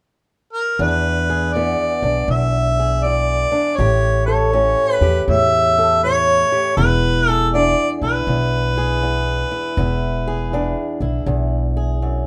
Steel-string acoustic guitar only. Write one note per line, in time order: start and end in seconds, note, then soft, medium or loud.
0.79 1.54 E2 medium
0.79 2.02 D4 medium
1.30 2.78 G#4 medium
1.55 2.29 E2 medium
1.55 3.77 B3 medium
2.04 3.50 D4 medium
2.30 3.04 E2 medium
2.79 3.76 G#4 medium
3.05 3.78 E2 medium
3.52 3.75 D4 medium
3.79 4.52 A2 medium
3.79 5.01 G4 medium
4.28 5.77 A4 medium
4.53 5.28 A2 medium
4.53 6.75 C#4 medium
5.02 6.51 G4 medium
5.29 6.02 A2 medium
5.78 6.75 A4 medium
6.04 6.75 A2 medium
6.52 6.75 G4 medium
6.78 7.53 E2 medium
6.78 8.02 E4 medium
7.28 8.76 G#4 medium
7.54 8.28 E2 medium
7.54 9.75 D4 medium
8.03 9.51 E4 medium
8.28 9.01 E2 medium
8.78 9.75 G#4 medium
9.02 9.77 E2 medium
9.51 9.79 E4 medium
9.78 10.52 E2 medium
9.78 11.01 E4 medium
10.28 11.75 G#4 medium
10.53 11.26 E2 medium
10.53 12.27 D4 medium
11.02 12.27 E4 medium
11.27 12.01 E2 medium
11.77 12.27 G#4 medium
12.02 12.27 F#2 medium